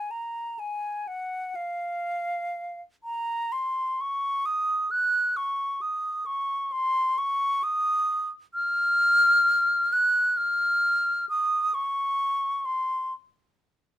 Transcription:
0.00 0.12 G#5 medium
0.11 0.61 A#5 medium
0.59 1.09 G#5 medium
1.08 1.57 F#5 medium
1.55 2.80 F5 medium
3.04 3.54 A#5 medium
3.52 4.02 C6 medium
4.01 4.47 C#6 medium
4.46 4.93 D#6 medium
4.91 5.38 F#6 medium
5.37 5.83 C#6 medium
5.81 6.28 D#6 medium
6.26 6.74 C#6 medium
6.72 7.20 C6 medium
7.18 7.65 C#6 medium
7.63 8.29 D#6 medium
8.54 9.94 F6 loud
9.93 10.39 F#6 medium
10.37 11.29 F6 medium
11.29 11.76 D#6 medium
11.74 12.67 C#6 medium
12.65 13.14 C6 medium

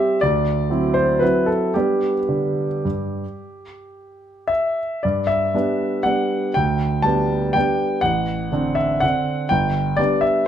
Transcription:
0.00 0.19 G3 soft
0.00 0.19 C4 soft
0.00 0.19 G4 soft
0.00 0.21 E5 medium
0.21 0.68 D2 medium
0.21 0.94 D5 medium
0.70 1.18 F#3 soft
0.70 1.18 C4 soft
0.70 1.18 E4 soft
0.94 1.21 C5 medium
1.19 1.72 F#3 soft
1.19 1.72 C4 soft
1.19 1.72 E4 soft
1.19 1.48 B4 medium
1.46 1.74 A4 medium
1.74 2.13 G3 soft
1.74 2.18 B3 soft
1.74 2.18 D4 soft
1.74 4.77 G4 medium
2.29 2.68 D3 soft
2.85 3.23 G2 soft
4.48 5.03 E5 medium
5.03 5.53 G2 soft
5.03 5.28 D5 medium
5.27 6.05 E5 medium
5.54 6.02 G3 soft
5.54 6.02 B3 soft
5.54 6.02 D4 soft
6.03 6.51 G3 soft
6.03 6.52 B3 soft
6.03 6.52 D4 soft
6.03 6.54 F#5 medium
6.54 7.03 D2 soft
6.54 7.04 G5 medium
7.02 7.51 G3 soft
7.02 7.52 B3 soft
7.02 7.52 D4 soft
7.02 7.54 A5 medium
7.53 8.00 G3 soft
7.53 8.01 B3 soft
7.53 8.01 D4 soft
7.53 8.03 G5 medium
8.01 8.51 A1 soft
8.01 8.76 F#5 medium
8.52 8.99 D3 soft
8.52 8.99 C4 soft
8.52 8.99 D4 soft
8.75 9.02 E5 medium
9.00 9.47 D3 soft
9.00 9.47 C4 soft
9.00 9.47 D4 soft
9.00 9.50 F#5 medium
9.49 9.97 G1 medium
9.49 9.97 G5 medium
9.97 10.44 G3 soft
9.97 10.45 B3 soft
9.97 10.45 D4 soft
9.97 10.22 D5 medium
10.21 10.47 E5 medium

